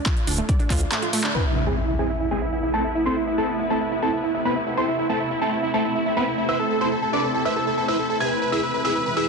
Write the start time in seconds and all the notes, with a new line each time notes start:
0.06 F4, kick, clap, closed hi-hat
0.17 closed hi-hat
0.27 D1 D4, open hi-hat
0.38 A3, closed hi-hat
0.49 D5, kick, closed hi-hat
0.59 D4, closed hi-hat
0.70 D2 F4, kick, clap, open hi-hat
0.81 closed hi-hat
0.92 A3, clap, closed hi-hat
1.02 F4, closed hi-hat
1.13 A3, open hi-hat
1.24 D4, clap
1.35 C3 A3 B3 C4 E4 B4 B5, impact
1.45 E4 E5
1.56 E4 E5
1.67 G#3 C4 E4 G#4 G#5
1.77 E4 E5
1.88 E4 E5
1.99 G#3 C4 E4 G#4 G#5
2.10 E4 E5
2.20 E4 E5
2.31 G#3 C4 E4 G#4 G#5
2.42 E4 E5
2.52 E4 E5
2.63 E4 E5
2.74 A3 C4 E4 A4 A5
2.84 E4 E5
2.95 E4 E5
3.06 C4 E4 A4 C5 C6
3.16 E4 E5
3.27 E4 E5
3.38 A3 C4 E4 A4 A5
3.49 E4 E5
3.59 E4 E5
3.70 A3 C4 E4 A4 A5
3.81 E4 E5
3.92 E4 E5
4.02 A3 C4 E4 A4 A5
4.13 E4 E5
4.24 E4 E5
4.34 E4 E5
4.45 B3 C4 E4 B4 B5
4.56 E4 E5
4.67 E4 E5
4.77 C4 E4 A4 C5 C6
4.88 E4 E5
4.99 E4 E5
5.09 A3 C4 E4 A4 A5
5.20 E4 E5
5.31 E4 E5
5.41 A3 C4 E4 A4 A5
5.52 E4 E5
5.63 E4 E5
5.74 A3 C4 E4 A4 A5
5.84 E4 E5
5.95 E4 E5
6.06 E4 E5
6.17 B3 C4 E4 B4 B5
6.27 E4 E5
6.38 E4 E5
6.49 E4 B4 C5 E5 E6
6.59 A4 A5
6.70 A4 A5
6.81 C4 E4 A4 C5 C6
6.92 A4 A5
7.02 A4 A5
7.13 D4 A4 B4 D5 D6
7.24 A4 A5
7.34 A4 A5
7.45 E4 B4 C5 E5 E6
7.56 A4 A5
7.67 A4 A5
7.77 A4 A5
7.88 E4 B4 C5 E5 E6
7.99 A4 A5
8.10 A4 A5
8.20 B2 E3 G#3 G#4 B4 E5 G#5 G#6
8.31 B4 B5
8.42 B4 B5
8.52 E4 G#4 B4 E5 E6
8.63 B4 B5
8.74 B4 B5
8.85 E4 G#4 B4 E5 E6
8.95 B4 B5
9.06 B4 B5
9.17 E4 G#4 B4 E5 E6